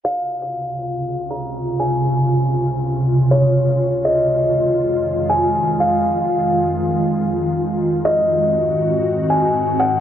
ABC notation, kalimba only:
X:1
M:4/4
L:1/8
Q:1/4=120
K:Db
V:1 name="Kalimba"
f2 z3 b2 a | z4 z d3 | e2 z3 a2 f | z8 |
e2 z3 a2 g |]